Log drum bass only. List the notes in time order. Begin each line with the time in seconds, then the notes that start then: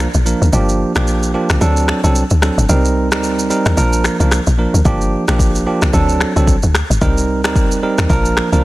0.14 A#1
0.42 D2
0.53 G1
0.96 A#1
1.50 C2
1.61 D2
2.04 C2
2.31 D2
2.58 G1
2.69 C2
3.12 D2
3.66 D#2
3.77 A#1
4.20 C2
4.47 A#1
4.74 D2
4.85 G1
5.28 A#1
5.82 C2
5.93 D2
6.36 C2
6.63 D2
6.90 G1
7.02 C2
7.44 D2
7.98 D#2
8.10 A#1
8.52 C2